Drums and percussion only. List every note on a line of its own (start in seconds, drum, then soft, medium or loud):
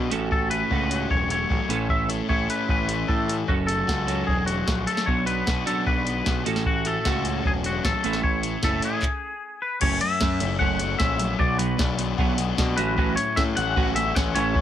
0.11 closed hi-hat medium
0.31 kick medium
0.51 closed hi-hat medium
0.71 kick medium
0.91 closed hi-hat medium
1.10 kick medium
1.30 closed hi-hat medium
1.50 kick medium
1.70 closed hi-hat medium
1.89 kick medium
2.10 closed hi-hat medium
2.29 kick medium
2.50 closed hi-hat medium
2.69 kick medium
2.89 closed hi-hat medium
3.09 kick medium
3.29 closed hi-hat medium
3.48 kick medium
3.68 closed hi-hat medium
3.88 kick medium
3.88 snare medium
4.08 closed hi-hat medium
4.28 kick medium
4.48 closed hi-hat medium
4.67 kick medium
4.67 snare medium
4.87 closed hi-hat medium
4.97 snare medium
5.07 kick medium
5.27 closed hi-hat medium
5.47 kick medium
5.47 snare medium
5.67 closed hi-hat medium
5.87 kick medium
6.07 closed hi-hat medium
6.26 kick medium
6.26 snare medium
6.46 closed hi-hat medium
6.56 snare medium
6.66 kick medium
6.85 closed hi-hat medium
7.05 kick medium
7.05 snare medium
7.25 closed hi-hat medium
7.45 kick medium
7.64 closed hi-hat medium
7.84 kick medium
7.84 snare loud
8.04 closed hi-hat medium
8.13 snare medium
8.24 kick medium
8.43 closed hi-hat medium
8.63 kick medium
8.63 snare medium
8.82 closed hi-hat medium
9.02 kick medium
9.02 clap medium
9.81 kick loud
9.81 crash medium
10.01 closed hi-hat medium
10.21 kick loud
10.21 snare loud
10.40 closed hi-hat medium
10.60 kick loud
10.79 closed hi-hat medium
11.00 kick loud
11.00 snare loud
11.20 closed hi-hat medium
11.39 kick loud
11.59 closed hi-hat medium
11.79 kick loud
11.79 snare loud
11.99 closed hi-hat medium
12.18 kick loud
12.38 closed hi-hat medium
12.58 kick loud
12.58 snare loud
12.78 closed hi-hat medium
12.97 kick loud
13.17 closed hi-hat medium
13.37 kick medium
13.37 snare loud
13.57 closed hi-hat medium
13.76 kick loud
13.96 closed hi-hat medium
14.16 kick loud
14.16 snare loud
14.36 closed hi-hat medium
14.55 kick loud